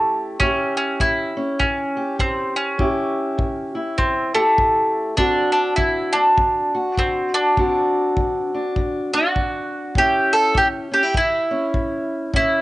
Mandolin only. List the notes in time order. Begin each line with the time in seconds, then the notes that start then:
Already playing: A3
0.40 C#4
0.77 C#4
1.01 E4
1.59 C#4
2.20 C4
2.56 C#4
3.98 C4
4.35 A3
5.17 D4
5.52 D4
5.76 E4
6.13 D4
6.99 C4
7.34 D4
9.14 F#4
9.98 G4
10.33 A4
10.57 G4
10.94 G4
11.17 E4
12.36 E4